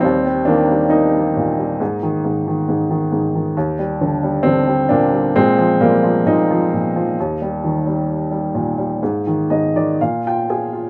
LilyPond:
<<
  \new Staff \with { instrumentName = "Upright piano" } { \time 4/4 \key ees \major \tempo 4 = 66 r1 | r1 | r2 r8 ees''16 d''16 f''16 g''16 aes''8 | }
  \new Staff \with { instrumentName = "Upright piano" } { \clef bass \time 4/4 \key ees \major << { <g c'>8 <bes d'>8 <bes ees'>2~ <bes ees'>8 r8 | r4 <g c'>8 <bes d'>8 <aes c'>8 <g bes>8 <bes ees'>4~ | <bes ees'>2. r4 | } \\ { ees,16 g16 ees16 g8 g16 bes,16 g16 aes,16 ees16 aes,16 ees16 aes,16 ees16 aes,16 ees16 | ees,16 g16 d16 g16 d16 g16 bes,16 g16 bes,16 f16 bes,16 f16 bes,16 f16 bes,16 f16 | ees,16 g16 ees16 g8 g16 bes,16 g16 aes,16 ees16 aes,16 ees16 bes,16 f'16 aes'16 f'16 | } >> }
>>